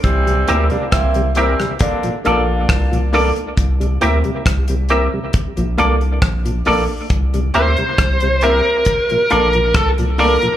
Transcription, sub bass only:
X:1
M:4/4
L:1/16
Q:1/4=68
K:Cmix
V:1 name="Sub bass" clef=bass
C,,2 D,, z C,,3 z3 B,,,2 C,,3 z | C,,2 D,, z C,,3 z2 B,,, C,,2 B,,,2 B,,, z | C,,2 D,, z C,,3 z3 B,,,2 C,,3 z |]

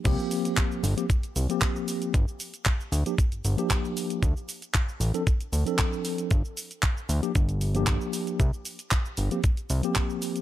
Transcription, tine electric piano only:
X:1
M:4/4
L:1/16
Q:1/4=115
K:Gm
V:1 name="Tine electric piano"
[F,B,CG]6 z [F,B,CG] z3 [F,B,CG]4- [F,B,CG] | z6 z [F,B,DG] z3 [F,B,DG]4- [F,B,DG] | z6 z [F,CDA] z3 [F,CDA]4- [F,CDA] | z6 z [F,B,DG] z3 [F,B,DG]4- [F,B,DG] |
z6 z [F,B,CG] z3 [F,B,CG]4- [F,B,CG] |]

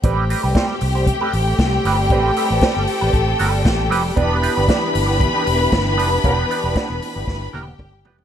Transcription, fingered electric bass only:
X:1
M:4/4
L:1/16
Q:1/4=116
K:Am
V:1 name="Fingered electric bass" clef=bass
A,,,3 C,, z2 C,,3 z A,,,2 C,,2 G,,,2 | A,,,2 z A,,, z G,,, z A,,, A,,,2 G,,,2 A,,,2 F,,,2 | E,,,3 G,,, z2 G,,,3 z E,,,2 G,,,2 F,,,2 | E,,,2 z E,,, z E,,, z G,,, G,,,2 E,,,2 G,,,2 F,,,2 |]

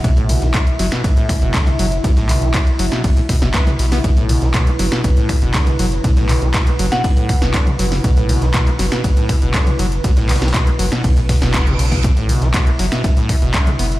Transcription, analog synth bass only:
X:1
M:4/4
L:1/16
Q:1/4=120
K:Bm
V:1 name="Analog synth bass" clef=bass
B,,,3 B,,, z2 F,,, z B,,, z2 F,,, z2 F,,,2 | B,,,3 B,,, z2 F,,, z B,,, z2 F,,, z2 B,,,2 | B,,,3 B,,, z2 F,,, z B,,, z2 F,,, z2 F,,,2 | B,,,3 B,,, z2 F,,, z B,,, z2 F,,, z2 F,,,2 |
B,,,3 B,,, z2 F,,, z B,,, z2 F,,, z2 F,,,2 | B,,,3 B,,, z2 F,,, z B,,,3 F,,,3 B,,,2 | B,,,3 B,,, z2 F,,, z B,,, z2 F,,, z2 F,,,2 |]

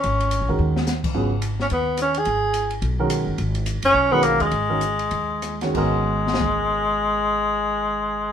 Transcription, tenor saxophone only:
X:1
M:4/4
L:1/8
Q:"Swing" 1/4=212
K:G#m
V:1 name="Tenor saxophone"
C3 z4 z | z3 C B,2 C G- | G3 z4 z | z3 C2 B, A, G,- |
G,6- G, z | G,8- | G,8 |]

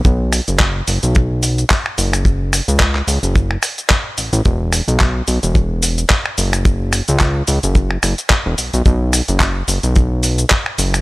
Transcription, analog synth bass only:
X:1
M:4/4
L:1/16
Q:"Swing 16ths" 1/4=109
K:Bdor
V:1 name="Analog synth bass" clef=bass
B,,,3 F,,,3 F,,, B,,,4- B,,, z2 F,,,2- | F,,,3 C,,3 C,, F,,,3 z4 A,,, A,,, | E,,,3 B,,,3 B,,, E,,,4- E,,, z2 F,,,2- | F,,,3 C,,3 C,, F,,,3 F,,, z2 E,,, B,,, B,,, |
B,,,3 F,,,3 F,,, B,,,4- B,,, z2 F,,,2 |]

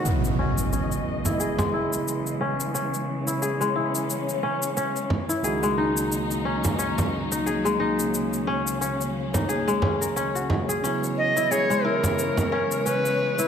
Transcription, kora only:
X:1
M:4/4
L:1/16
Q:"Swing 16ths" 1/4=89
K:C#dor
V:1 name="Kora"
z2 C2 C z2 E G G, E4 C2 | C z2 E G G, E4 C2 C z2 E | G G, D4 C2 C z2 D G G, D2- | D2 C2 C z2 D G G, C A C F z G |
C z2 E G G, E4 C2 C z2 E |]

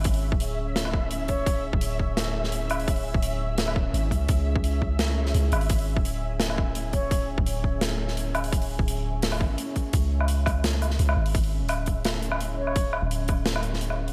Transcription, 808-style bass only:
X:1
M:4/4
L:1/16
Q:1/4=170
K:C#phr
V:1 name="808-style bass" clef=bass
G,,,3 D,,,12- D,,,- | D,,,3 D,,,12- D,,,- | D,,,3 D,,,8- D,,, G,,,2 C,,2 | C,,12 C,,2 G,,,2- |
G,,,3 D,,,12- D,,,- | D,,,3 D,,,12- D,,,- | D,,,3 D,,,6- D,,, G,,,2 z4 | C,,12 C,,2 G,,,2- |
G,,,3 D,,,12- D,,,- | D,,,3 D,,,12- D,,, |]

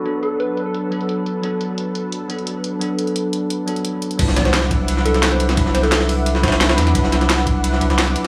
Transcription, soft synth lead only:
X:1
M:4/4
L:1/16
Q:1/4=174
K:Clyd
V:1 name="Soft synth lead"
z2 A2 B2 z A6 z3 | z16 | z16 | z2 d c2 z4 z A2 z c2 z |
z2 c A6 z6 z | z16 |]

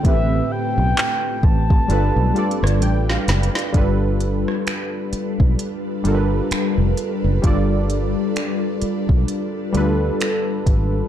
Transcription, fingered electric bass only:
X:1
M:4/4
L:1/16
Q:"Swing 16ths" 1/4=65
K:Gmix
V:1 name="Fingered electric bass" clef=bass
A,,,2 z B,,, z2 A,,,2 G,,, B,,, z G,,, A,,,2 ^F,,, z | G,,,4 z3 B,,, z2 G,,,2 z F,,, z ^F,,, | G,,,4 z3 B,,, z2 D,,2 z2 ^G,,,2 |]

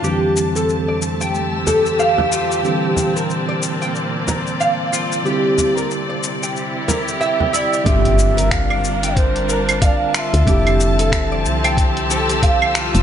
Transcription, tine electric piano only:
X:1
M:4/4
L:1/8
Q:"Swing 16ths" 1/4=92
K:Gdor
V:1 name="Tine electric piano" clef=bass
[F,,D,E,G,C]8 | [D,E,G,C]8 | [D,G,CE]8 | [D,G,CF]6- [D,G,CF] z |
[D,G,CE]6- [D,G,CE] z |]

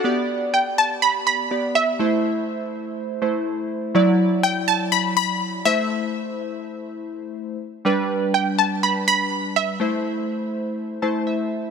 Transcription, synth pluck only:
X:1
M:4/4
L:1/8
Q:1/4=123
K:G
V:1 name="Synth pluck"
z2 g a b b2 e- | e6- e z | z2 g a b b2 e- | e6- e z |
z2 g a b b2 e- | e6- e z |]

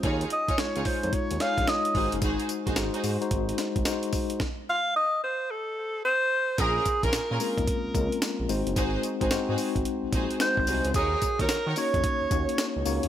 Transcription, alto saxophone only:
X:1
M:4/4
L:1/16
Q:"Swing 16ths" 1/4=110
K:Abmix
V:1 name="Alto saxophone"
z2 e2 d2 c2 d2 f2 e3 z | z16 | z2 f2 e2 c2 =A4 c4 | A3 B3 B8 z2 |
z12 c4 | A3 B3 d8 z2 |]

